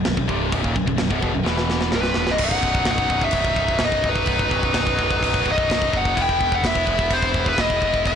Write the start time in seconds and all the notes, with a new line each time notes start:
0.05 B0 B1 F#2, snare, crash
0.17 B0 B1 F#2, kick
0.27 C1 C2 G2 C3, kick
0.52 B0 B1 F#2, kick, crash
0.63 D#1 D#2 A#2, kick
0.76 B0 B1 F#2, kick
0.87 B0 B1 F#2, kick
0.97 B0 B1 F#2, snare, crash
1.10 B0 B1 F#2, kick
1.20 E1 E2 B2, kick
1.34 B0 B1 F#2
1.44 E1 E2 B2 E3, snare
1.58 snare
1.70 snare
1.81 snare
1.92 C1 C2 G2 C3 B4, snare
2.03 snare
2.14 E1 E2 B2, snare
2.27 C1 C2 G2, snare
2.31 D#5
2.38 B0 F#3 D#4, kick, crash
2.44 F#3 D#4 F#5
2.51 D#4, kick
2.57 F#3
2.62 B0 F#3 D#4, kick
2.72 F#3 D#4, kick
2.79 F#3 D#4
2.85 B0 F#3 D#4, kick, snare, crash
2.91 F#3 D#4 F#5
2.98 kick
3.03 F#3 D#4
3.09 B0 F#3 D#4, kick
3.17 F#3 D#4
3.21 F#3 D#4 E5, kick
3.31 B0 F#3 D#4, kick, crash
3.40 F#3 D#4
3.45 kick
3.49 F#3 D#4
3.56 B0 F#3 D#4, kick
3.65 F#3 D#4, kick
3.72 F#3 D#4
3.79 B0 F#3 D#4, kick, snare, crash
3.85 F#3 D#4 D#5
3.92 F#3 D#4, kick
4.03 B0 F#3 D#4, kick
4.09 F#3 D#4 B4
4.16 F#3 D#4, kick
4.26 B0 F#3 D#4, kick, crash
4.35 F#3 D#4
4.39 F#3 D#4, kick
4.50 B0 F#3 D#4, kick
4.58 F#3 D#4
4.63 F#3 D#4, kick
4.73 B0 F#3 D#4, kick, snare, crash
4.80 F#3 D#4
4.87 F#3 D#4, kick
4.95 B0 F#3 D#4, kick
5.02 F#3 D#4
5.11 F#3 D#4, kick
5.17 F#3 D#4
5.23 B0 F#3 D#4, kick, crash
5.33 F#3 D#4, kick
5.40 F#3 D#4
5.46 B0 F#3 D#4, kick
5.52 D#4 D#5
5.56 F#3, kick
5.64 F#3 D#4
5.70 B0 F#3 D#4, kick, snare, crash
5.78 F#3 D#4, kick
5.85 F#3 D#4
5.93 F#1 F#3 D#4, kick
5.97 D#4 F#5
6.01 F#3, kick
6.08 F#3 D#4
6.16 E1 B3 E4, kick, crash
6.22 B3 E4 G5
6.29 B3 E4, kick
6.39 E1 B3 E4, kick
6.46 B3 E4
6.52 B3 E4 F#5, kick
6.62 E1 B3 E4, kick, snare, crash
6.66 B3 E5
6.71 E4
6.75 B3 E4, kick
6.86 E1 B3 E4, kick
6.95 B3 E4
6.99 B3 E4, kick
7.10 E1 B3 E4 C5, kick, crash
7.18 B3 E4
7.22 E4, kick
7.27 B3
7.32 E1 B3 E4, kick
7.40 B3 E4
7.46 B3 E4 B4, kick
7.56 E1 B3 E4, kick, snare, crash
7.60 E4 D#5
7.64 B3
7.70 B3 E4, kick
7.80 E1 B3 E4, kick
7.88 B3 E4
7.94 B3 E4, kick
8.04 E1 B3 E4 E5, kick, crash
8.12 B3